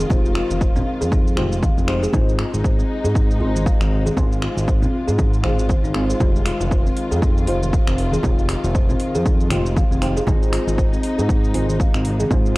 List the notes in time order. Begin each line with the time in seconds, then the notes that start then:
Already playing: D#3 G#3 F4
0.10 F1 G#3 D#4 F4 G4 C5, kick, high conga, low conga, shaker
0.25 shaker
0.35 F4, finger snap
0.50 F1, high conga, shaker
0.61 C5, kick, shaker
0.76 C4, low conga, shaker
1.01 F2 G#4, shaker
1.12 D#4, kick, high conga, shaker
1.27 shaker
1.37 F1 G#3 D#4 F4 G4 C5, finger snap, mid tom, high conga
1.52 shaker
1.63 F5, kick, high conga, shaker
1.77 F1 C4, high conga, shaker
1.88 G#3 D#4 F4 G4 C5, finger snap
2.03 G#4, shaker
2.13 G#1 C3 G#3 C4 D#4 F4 G#4 C5, kick, high conga, low conga, shaker
2.29 shaker
2.39 F4, finger snap
2.54 G#1, high conga, shaker
2.64 C5, kick, shaker
2.79 C4, shaker
3.04 G#2 G#4, shaker
3.15 D#4, kick, shaker
3.31 shaker
3.40 G#1 G#3 C4 D#4 F4 G#4 C5
3.56 high conga, shaker
3.66 F5, kick, shaker
3.80 G#1 C4, finger snap, high conga, shaker
4.06 G#4, high conga, shaker
4.17 G#1 G#3 C4 D#4 F4 G#4 C5, kick, high conga, low conga, shaker
4.32 shaker
4.42 F4, finger snap
4.57 G#1, high conga, shaker
4.67 C5, kick, shaker
4.82 C4, low conga, shaker
5.08 G#2 G#4, shaker
5.18 D#4, kick, high conga, shaker
5.34 shaker
5.44 G#1 G#3 C4 D#4 G#4 C5 F5, finger snap, mid tom, high conga
5.59 shaker
5.69 C5, kick, high conga, shaker
5.84 G#1 D#4, high conga, shaker
5.94 G#3 C4 D#4 G#4 C5, finger snap
6.10 G#4, shaker
6.20 F1 D#3 G#3 D#4 F4 G4 C5, kick, high conga, low conga, shaker
6.36 shaker
6.46 F4, finger snap, open hi-hat
6.60 F1 F4, high conga, shaker
6.71 C5, kick, shaker
6.86 C4, shaker
6.97 open hi-hat
7.11 F2 G#4, shaker
7.22 D#4, kick, shaker
7.38 shaker
7.47 F1 G#3 D#4 F4 G4 C5, open hi-hat
7.63 high conga, shaker
7.73 F5, kick, shaker
7.87 F1 C4, finger snap, high conga, shaker
7.98 open hi-hat
8.12 G#4, high conga, shaker
8.23 F1 G#3 D#4 F4 G4 C5, kick, high conga, low conga, shaker
8.39 shaker
8.49 F4, finger snap, open hi-hat
8.64 F1 F4, high conga, shaker
8.75 C5, kick, shaker
8.89 C4, low conga, shaker
9.00 open hi-hat
9.15 F2 G#4, shaker
9.25 D#4, kick, high conga, shaker
9.40 shaker
9.50 F1 G#3 D#4 F4 G4 C5, finger snap, mid tom, open hi-hat, high conga
9.66 shaker
9.76 F5, kick, high conga, shaker
9.91 F1 C4, high conga, shaker
10.02 G#3 D#4 F4 G4 C5, finger snap, open hi-hat
10.17 G#4, shaker
10.27 G#1 C3 G#3 C4 D#4 F4 G#4 C5, kick, high conga, low conga, shaker
10.43 shaker
10.53 F4, finger snap, open hi-hat
10.67 G#1 F4, high conga, shaker
10.78 C5, kick, shaker
10.93 C4, shaker
11.03 open hi-hat
11.18 G#2 G#4, shaker
11.29 D#4, kick, shaker
11.44 shaker
11.54 G#1 G#3 C4 D#4 F4 G#4 C5, open hi-hat
11.69 high conga, shaker
11.80 F5, kick, shaker
11.94 G#1 C4, finger snap, high conga, shaker
12.05 open hi-hat
12.20 G#4, high conga, shaker
12.30 G#1 G#3 C4 D#4 F4 G#4 C5, kick, high conga, low conga, shaker
12.46 shaker